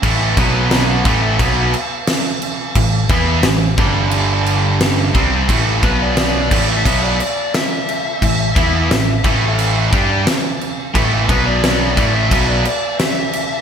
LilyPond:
<<
  \new Staff \with { instrumentName = "Lead electric guitar" } { \time 4/4 \key a \minor \tempo 4 = 88 r1 | r1 | r8 b'16 d''4 e''8 d''16 d''8 e''4~ | e''2 r2 |
r8 b'16 d''4 e''8 d''16 d''8 e''4 | }
  \new Staff \with { instrumentName = "Distorted electric guitar" } { \clef bass \time 4/4 \key a \minor <a, e a>8 <b, fis b>4 <a, e a>8 <b, fis b>8 r4. | <a, e>8 <e b e'>8 <a, e>8 <g, d g>2 <c g c'>8 | <a, e a>8 <b, fis b>4 <a, e a>8 <b, fis b>8 r4. | <a, e>8 <e b e'>8 <a, e>8 <a, e a>4 <g d' g'>8 r4 |
<a, e a>8 <b, fis b>4 <a, e a>8 <b, fis b>8 r4. | }
  \new Staff \with { instrumentName = "Overdriven electric guitar" } { \clef bass \time 4/4 \key a \minor <a, e a>8 <b, fis b>4 <a, e a>8 <b, fis b>8 r4. | <a, e>8 <e b e'>8 <a, e>8 <g, d g>2 <c g c'>8 | <a, e a>8 <b, fis b>4 <a, e a>8 <b, fis b>8 r4. | <a, e>8 <e b e'>8 <a, e>8 <a, e a>4 <g d' g'>8 r4 |
<a, e a>8 <b, fis b>4 <a, e a>8 <b, fis b>8 r4. | }
  \new Staff \with { instrumentName = "Picked electric bass" } { \clef bass \time 4/4 \key a \minor a,,8 b,,4 a,,8 b,,8 r4. | a,,8 e,8 a,,8 g,,2 c,8 | a,,8 b,,4 a,,8 b,,8 r4. | a,,8 e,8 a,,8 a,,4 g,8 r4 |
a,,8 b,,4 a,,8 b,,8 r4. | }
  \new DrumStaff \with { instrumentName = "Drums" } \drummode { \time 4/4 <cymc bd>8 <cymc bd>8 <cymc sn>8 <cymc bd>8 <cymc bd>8 cymc8 <cymc sn>8 cymc8 | <cymc bd>8 <cymc bd>8 <cymc sn>8 <cymc bd>8 cymc8 cymc8 <cymc sn>8 <cymc bd>8 | <cymc bd>8 <cymc bd>8 <cymc sn>8 <cymc bd>8 <cymc bd>8 cymc8 <cymc sn>8 cymc8 | <cymc bd>8 <cymc bd>8 <cymc sn>8 <cymc bd>8 cymc8 <cymc bd>8 <cymc sn>8 cymc8 |
<cymc bd>8 <cymc bd>8 <cymc sn>8 <cymc bd>8 <cymc bd>8 cymc8 <cymc sn>8 cymc8 | }
>>